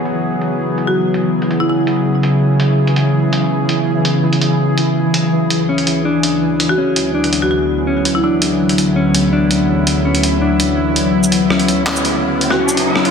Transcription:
0.00 5.33 C#3 medium
0.00 11.15 E3 medium
0.00 5.32 F#3 medium
0.00 5.32 B3 medium
0.00 5.33 E4 medium
0.00 11.15 E4 medium
0.00 11.14 G#4 medium
0.05 closed hi-hat medium
0.42 closed hi-hat medium
0.78 closed hi-hat medium
0.87 1.09 F#4 medium
1.14 closed hi-hat medium
1.42 closed hi-hat soft
1.51 closed hi-hat medium
1.60 1.66 E4 medium
1.70 1.75 E4 medium
1.87 closed hi-hat medium
2.23 closed hi-hat medium
2.60 closed hi-hat medium
2.87 closed hi-hat soft
2.96 closed hi-hat medium
3.33 closed hi-hat medium
3.69 closed hi-hat medium
4.05 closed hi-hat medium
4.33 closed hi-hat soft
4.41 closed hi-hat medium
4.78 closed hi-hat medium
5.14 closed hi-hat medium
5.32 11.14 D2 medium
5.50 13.11 B3 medium
5.50 closed hi-hat medium
5.64 13.11 F#3 medium
5.69 6.04 C#4 medium
5.78 closed hi-hat soft
5.87 closed hi-hat medium
6.04 6.76 D4 medium
6.04 13.11 E4 medium
6.23 closed hi-hat medium
6.60 closed hi-hat medium
6.69 6.91 F#4 medium
6.78 7.13 C#4 medium
6.96 closed hi-hat medium
7.14 7.85 D4 medium
7.24 closed hi-hat soft
7.33 closed hi-hat medium
7.42 7.48 F#4 medium
7.51 7.57 F#4 medium
7.87 8.22 C#4 medium
8.05 closed hi-hat medium
8.15 8.20 E4 medium
8.23 8.94 D4 medium
8.23 8.30 E4 medium
8.42 closed hi-hat medium
8.69 closed hi-hat soft
8.78 closed hi-hat medium
8.96 9.31 C#4 medium
9.15 closed hi-hat medium
9.33 10.04 D4 medium
9.51 closed hi-hat medium
9.87 closed hi-hat medium
10.05 10.40 C#4 medium
10.15 closed hi-hat soft
10.23 closed hi-hat medium
10.41 11.13 D4 medium
10.60 closed hi-hat medium
10.96 closed hi-hat medium
11.14 13.11 C#3 medium
11.14 riser medium
11.24 shaker medium
11.32 closed hi-hat medium
11.50 11.85 C#4 medium
11.50 cross-stick medium
11.60 closed hi-hat soft
11.68 closed hi-hat medium
11.86 12.58 C#4 medium
11.86 clap loud
11.96 shaker medium
12.05 closed hi-hat medium
12.24 13.11 G#4 medium
12.41 closed hi-hat medium
12.50 12.73 F#4 medium
12.50 cross-stick soft
12.59 12.94 C#4 medium
12.69 shaker medium
12.77 closed hi-hat medium
12.96 13.11 C#4 medium
12.96 cross-stick medium
13.05 closed hi-hat soft

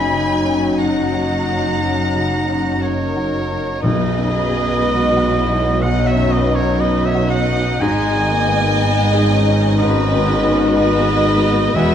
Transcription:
0.00 3.60 F#1 medium
0.00 1.77 F#2 medium
0.00 3.60 F#2 medium
0.00 3.48 F#3 medium
0.00 3.64 F#3 medium
0.00 3.52 D#4 medium
0.00 3.60 D#4 medium
0.00 0.78 G#5 medium
0.00 0.51 B5 medium
0.00 0.79 B5 medium
0.11 0.66 C#3 soft
0.45 1.00 C#4 soft
0.78 1.34 D#4 soft
0.78 2.83 F#5 medium
0.78 2.83 A#5 medium
0.78 2.84 A#5 medium
1.14 1.68 F#4 soft
1.48 2.02 D#4 soft
1.82 3.80 F#2 soft
2.15 2.70 C#3 soft
2.50 3.04 C#4 soft
2.82 3.37 D#4 soft
2.82 3.84 A#4 medium
2.82 3.82 C#5 medium
3.17 3.71 F#4 soft
3.50 3.84 D#4 soft
3.83 5.78 B1 medium
3.83 7.78 B1 medium
3.83 5.29 B2 medium
3.83 7.77 B2 medium
3.83 4.80 F#3 medium
3.83 7.77 F#3 medium
3.83 4.30 D#4 medium
3.83 5.78 B4 medium
3.83 5.84 D#5 loud
3.83 7.78 D#5 medium
3.83 5.83 D#5 medium
4.18 4.71 F#2 soft
4.33 4.83 G#4 medium
4.50 5.03 B3 soft
4.82 5.83 G#3 medium
4.82 5.36 D#4 medium
4.82 5.33 F#4 medium
5.17 5.69 F#4 soft
5.33 5.82 E4 medium
5.50 6.02 D#4 soft
5.82 7.77 B1 medium
5.82 6.80 F#3 medium
5.82 8.79 D#4 medium
5.82 6.08 D#5 medium
5.82 6.06 F#5 medium
5.82 6.08 F#5 medium
6.07 6.32 C#5 medium
6.07 6.34 E5 medium
6.07 6.32 E5 medium
6.16 6.69 F#2 soft
6.30 6.57 B4 medium
6.30 6.56 D#5 medium
6.30 6.57 D#5 medium
6.48 7.01 B3 soft
6.55 6.81 A#4 medium
6.55 6.82 C#5 medium
6.55 6.81 C#5 medium
6.80 7.79 F#3 medium
6.80 7.35 D#4 soft
6.80 7.07 B4 medium
6.80 7.06 D#5 medium
6.80 7.07 D#5 medium
7.05 7.31 C#5 medium
7.05 7.31 E5 medium
7.05 7.30 E5 medium
7.15 7.68 F#4 medium
7.30 7.79 D#5 medium
7.30 7.81 F#5 medium
7.30 7.83 F#5 loud
7.48 7.81 D#4 soft
7.80 11.75 G#1 medium
7.80 9.75 G#2 medium
7.80 11.75 G#2 medium
7.80 8.31 G#3 medium
7.80 11.71 G#3 medium
7.80 11.71 D#4 medium
7.80 9.75 D#5 loud
7.80 9.78 G#5 loud
7.80 9.51 G#5 loud
8.15 8.68 D#3 soft
8.31 8.81 A#3 medium
8.48 9.01 B3 medium
8.80 9.29 B3 medium
8.80 9.33 D#4 medium
8.80 9.77 D#4 medium
9.14 9.66 G#4 medium
9.30 10.74 C#4 medium
9.47 9.99 D#4 medium
9.78 11.71 G#2 medium
9.78 11.75 F#4 medium
9.78 10.74 B4 medium
9.78 10.75 D#5 medium
9.78 10.73 D#5 loud
10.12 10.64 D#3 medium
10.45 10.97 B3 medium
10.75 11.25 B3 medium
10.75 11.29 D#4 medium
10.75 11.72 B4 loud
10.75 11.73 D#5 loud
10.75 11.77 D#5 loud
11.10 11.62 G#4 medium
11.26 11.75 B3 medium
11.43 11.75 D#4 medium
11.74 11.95 E1 medium
11.74 11.95 E2 loud
11.74 11.95 E2 medium
11.74 11.95 G#3 medium
11.74 11.95 E4 medium
11.74 11.95 F#4 loud
11.74 11.95 B4 loud
11.74 11.95 E5 loud

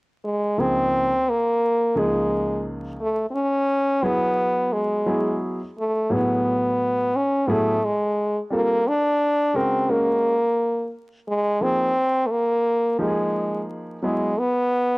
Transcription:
0.25 0.61 G#3 medium
0.58 1.10 C#2 medium
0.58 1.10 F3 medium
0.58 1.10 A#3 medium
0.58 1.31 C4 loud
0.58 1.11 D#4 medium
0.58 1.11 G#4 medium
1.29 2.00 A#3 medium
1.95 2.94 C#2 medium
1.95 2.94 F3 medium
1.95 2.66 G#3 medium
1.95 2.95 A#3 medium
1.95 2.95 D#4 medium
1.95 2.95 G#4 medium
3.01 3.28 A3 medium
3.30 3.36 C4 medium
3.34 4.05 C#4 loud
4.03 5.01 F#3 medium
4.03 5.01 B3 medium
4.03 4.74 B3 medium
4.03 5.02 E4 medium
4.03 5.02 G#4 medium
4.73 5.41 G#3 medium
5.06 5.58 F#3 medium
5.06 5.59 B3 medium
5.06 5.59 E4 medium
5.06 5.59 G#4 medium
5.79 6.14 A3 medium
6.10 7.08 A2 medium
6.10 7.08 F#3 medium
6.10 7.09 B3 medium
6.10 7.17 B3 medium
6.10 7.09 E4 medium
6.10 7.09 G#4 medium
7.16 7.51 C#4 medium
7.47 7.75 A2 medium
7.47 7.75 F#3 medium
7.47 7.86 A3 medium
7.47 7.75 B3 medium
7.47 7.75 E4 medium
7.47 7.76 G#4 medium
7.84 8.40 G#3 medium
8.50 8.78 G3 medium
8.50 8.89 A#3 medium
8.50 8.78 C4 medium
8.50 8.79 F4 medium
8.50 8.79 A4 medium
8.88 9.57 D4 loud
9.54 10.07 C#3 medium
9.54 9.87 G#3 medium
9.54 9.93 C4 medium
9.54 9.88 F#4 medium
9.54 9.89 A#4 medium
9.88 10.32 G#3 medium
9.88 10.94 A#3 medium
9.88 10.32 C#4 medium
9.88 10.33 F#4 medium
9.88 10.33 A#4 medium
11.28 11.64 G#3 medium
11.61 11.88 F3 medium
11.61 11.89 A#3 medium
11.61 12.28 C4 loud
11.61 11.89 D#4 medium
11.61 11.89 G#4 medium
12.27 12.32 A3 medium
12.31 13.00 A#3 medium
12.99 13.98 F3 medium
12.99 13.65 G#3 medium
12.99 13.98 A#3 medium
12.99 13.98 D#4 medium
12.99 13.09 G4 medium
13.07 14.02 G#4 medium
14.02 14.30 F#3 medium
14.02 14.40 G#3 medium
14.02 14.30 B3 medium
14.02 14.30 E4 medium
14.02 14.31 G#4 medium
14.39 14.98 B3 medium

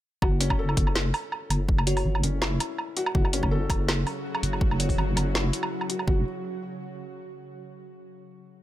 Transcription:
0.22 0.76 F#1 loud
0.22 0.39 F#4 loud
0.22 kick loud
0.22 low woodblock medium
0.40 0.57 C#4 loud
0.40 closed hi-hat medium
0.50 kick medium
0.50 low woodblock medium
0.59 1.30 A4 loud
0.69 low woodblock medium
0.77 1.13 F#1 medium
0.77 kick loud
0.77 closed hi-hat medium
0.87 low woodblock medium
0.96 snare loud
1.14 open hi-hat soft
1.14 low woodblock medium
1.32 low woodblock medium
1.50 2.04 F#1 loud
1.50 closed hi-hat medium
1.50 low woodblock medium
1.69 kick loud
1.78 low woodblock medium
1.87 2.23 F#4 medium
1.87 2.04 C#5 medium
1.87 closed hi-hat medium
1.97 open hi-hat soft
1.97 low woodblock medium
2.05 2.22 G1 loud
2.15 low woodblock medium
2.23 2.59 F#1 medium
2.23 2.40 C#4 medium
2.23 closed hi-hat medium
2.42 2.95 E4 medium
2.42 snare loud
2.42 low woodblock medium
2.60 closed hi-hat medium
2.60 low woodblock medium
2.78 low woodblock medium
2.97 3.08 F#4 loud
2.97 closed hi-hat medium
3.06 low woodblock medium
3.15 3.69 F#1 loud
3.15 6.05 C#3 medium
3.15 6.05 F#3 medium
3.15 3.32 F#4 loud
3.15 6.05 F#4 medium
3.15 kick loud
3.25 low woodblock soft
3.33 3.50 C#4 loud
3.33 closed hi-hat medium
3.43 kick medium
3.43 low woodblock medium
3.51 4.23 A4 loud
3.70 4.05 F#1 medium
3.70 kick loud
3.70 closed hi-hat medium
3.70 low woodblock medium
3.89 snare loud
3.89 low woodblock medium
4.07 open hi-hat soft
4.07 low woodblock medium
4.35 low woodblock medium
4.43 4.97 F#1 loud
4.43 closed hi-hat medium
4.53 low woodblock medium
4.61 kick loud
4.71 low woodblock soft
4.80 4.97 C#5 medium
4.80 closed hi-hat medium
4.89 kick medium
4.89 open hi-hat soft
4.98 5.15 G1 loud
4.98 low woodblock medium
5.16 5.52 F#1 medium
5.16 5.33 C#4 medium
5.16 closed hi-hat medium
5.16 low woodblock medium
5.34 5.51 E4 medium
5.34 snare loud
5.34 low woodblock medium
5.53 closed hi-hat medium
5.63 low woodblock medium
5.81 low woodblock medium
5.89 6.06 F#4 medium
5.89 closed hi-hat medium
5.99 low woodblock soft
6.07 6.24 F#1 loud
6.07 6.25 F#4 medium
6.07 kick loud

